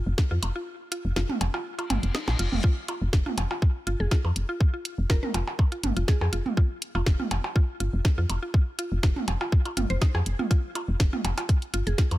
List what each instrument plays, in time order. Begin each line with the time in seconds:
0.07 fm bass F1
0.18 kick, snare
0.31 fm bass F2, synth arpeggio sound F4
0.43 fm bass F1, closed hi-hat, percussion blips
0.56 synth arpeggio sound F4
0.92 synth arpeggio sound F4, closed hi-hat
1.05 fm bass F1
1.16 fm bass F1, synth arpeggio sound F4, snare
1.29 mid tom
1.41 fm bass F1, closed hi-hat, percussion blips
1.54 synth arpeggio sound F4, percussion blips
1.66 reverse cymbal
1.78 synth arpeggio sound F4, closed hi-hat, percussion blips
1.90 fm bass G1, closed hi-hat, mid tom, percussion blips
2.03 fm bass F1, closed hi-hat
2.15 synth arpeggio sound D#4, snare
2.28 fm bass A#1, snare, percussion blips
2.39 fm bass F1, synth arpeggio sound F4, closed hi-hat
2.52 fm bass F1, mid tom
2.64 synth arpeggio sound F4, kick
2.88 synth arpeggio sound F4, closed hi-hat, percussion blips
3.02 fm bass F1
3.13 fm bass F1, kick, snare
3.26 synth arpeggio sound F4, mid tom
3.38 fm bass F1, closed hi-hat, percussion blips
3.51 synth arpeggio sound F4, percussion blips
3.62 kick
3.87 fm bass G1, synth arpeggio sound F4, closed hi-hat
4.00 fm bass F1, synth pluck G#4
4.11 synth arpeggio sound F4, kick, snare
4.25 fm bass F2, percussion blips
4.36 fm bass F1, closed hi-hat
4.49 synth arpeggio sound F4
4.61 kick
4.74 synth arpeggio sound F4
4.85 closed hi-hat
4.98 fm bass F1
5.10 fm bass F1, synth arpeggio sound F4, synth pluck A#4, kick, snare
5.23 synth pluck A#4, mid tom
5.34 fm bass F1, synth arpeggio sound F4, closed hi-hat, percussion blips
5.48 percussion blips
5.59 kick, percussion blips
5.72 synth arpeggio sound F4, closed hi-hat
5.83 fm bass G1, closed hi-hat, mid tom
5.97 fm bass F1, synth arpeggio sound F4, closed hi-hat
6.08 synth pluck G#4, kick, snare
6.21 fm bass F2, synth pluck G#4, percussion blips
6.33 fm bass F1, synth arpeggio sound F4, closed hi-hat
6.46 mid tom
6.57 synth arpeggio sound F4, kick
6.82 closed hi-hat
6.95 fm bass F1, synth arpeggio sound F4, percussion blips
7.06 fm bass F1, kick, snare
7.20 synth arpeggio sound F4, mid tom
7.31 fm bass F1, closed hi-hat, percussion blips
7.44 percussion blips
7.56 synth arpeggio sound F4, kick
7.80 fm bass G1, synth arpeggio sound F4, closed hi-hat
7.93 fm bass F1
8.05 kick, snare
8.18 fm bass F2, synth arpeggio sound F4
8.30 fm bass F1, closed hi-hat, percussion blips
8.43 synth arpeggio sound F4
8.54 kick
8.79 synth arpeggio sound F4, closed hi-hat
8.92 fm bass F1
9.03 fm bass F1, synth arpeggio sound F4, kick, snare
9.16 mid tom
9.28 fm bass F1, closed hi-hat, percussion blips
9.41 synth arpeggio sound F4, percussion blips
9.52 kick
9.65 synth arpeggio sound F4, closed hi-hat, percussion blips
9.77 fm bass G1, synth arpeggio sound F4, closed hi-hat, mid tom
9.90 fm bass F1, synth arpeggio sound C5, closed hi-hat
10.02 synth arpeggio sound D#4, kick, snare
10.15 fm bass F2, synth arpeggio sound G#4, percussion blips
10.26 fm bass F1, closed hi-hat
10.39 synth arpeggio sound F4, mid tom
10.51 synth arpeggio sound F4, kick, closed hi-hat
10.75 synth arpeggio sound F4, closed hi-hat, percussion blips
10.88 fm bass F1
11.00 fm bass F1, kick, snare, closed hi-hat
11.13 synth arpeggio sound F4, mid tom
11.25 fm bass F1, closed hi-hat, percussion blips
11.38 synth arpeggio sound F4, closed hi-hat, percussion blips
11.49 kick, closed hi-hat
11.62 closed hi-hat
11.74 fm bass G1, synth arpeggio sound F4, closed hi-hat
11.87 fm bass F1, synth pluck G#4, closed hi-hat
11.98 synth arpeggio sound F4, kick, snare, closed hi-hat
12.11 fm bass F2, closed hi-hat, percussion blips